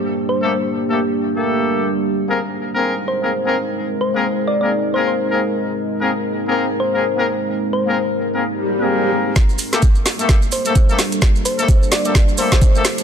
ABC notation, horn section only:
X:1
M:4/4
L:1/16
Q:"Swing 16ths" 1/4=129
K:Gm
V:1 name="Horn section"
z3 [A,B,GA] z3 [A,B,GA] z3 [A,B,GA]4- [A,B,GA] | z3 [B,C_AB] z3 [B,CAB]2 z2 [B,CAB] z [B,CAB] z2 | z3 [B,C_AB] z3 [B,CAB] z2 [B,CAB]2 z [B,CAB] z2 | z3 [B,C_AB] z3 [B,CAB]2 z2 [B,CAB] z [B,CAB] z2 |
z3 [B,C_AB] z3 [B,CAB] z3 [B,CAB]4- [B,CAB] | z3 [A,B,GA] z3 [A,B,GA]2 z2 [A,B,GA] z [A,B,GA] z2 | z3 [A,B,GA] z3 [A,B,GA] z2 [A,B,GA]2 z [A,B,GA] z2 |]